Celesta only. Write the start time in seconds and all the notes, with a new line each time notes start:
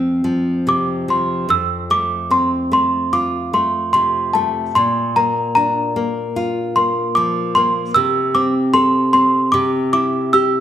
0.69 D6
1.10 C6
1.50 E6
1.91 D6
2.31 C6
2.73 C6
3.13 D6
3.54 C6
3.93 C6
4.33 A5
4.75 C6
5.16 A#5
5.55 A#5
6.76 C6
7.15 D6
7.55 C6
7.94 E6
8.35 D6
8.74 C6
9.13 C6
9.52 D6
9.93 D6
10.33 E6